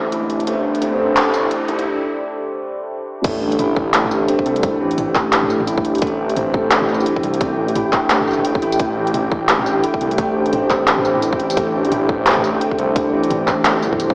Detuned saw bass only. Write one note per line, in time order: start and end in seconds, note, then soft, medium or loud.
0.00 0.29 A1 medium
0.30 0.46 A1 loud
0.47 0.81 A1 loud
0.81 1.50 A1 loud
1.68 1.86 C2 medium
3.24 3.58 A1 loud
3.59 4.27 A1 loud
4.46 4.79 C2 medium
4.81 5.49 A1 loud
5.50 5.83 A1 medium
5.84 6.01 A1 loud
6.02 6.35 A1 loud
6.36 7.05 A1 loud
7.23 7.57 C2 medium
7.58 8.09 A1 medium
8.10 8.44 A1 loud
8.45 8.78 A1 loud
8.80 9.13 A1 loud
9.14 9.82 A1 loud
10.01 10.34 C2 loud
10.35 11.04 A1 medium
11.05 11.39 A1 medium
11.39 11.56 A1 loud
11.57 11.91 A1 loud
11.92 12.60 A1 medium
12.78 13.12 C2 medium
13.13 14.14 A1 loud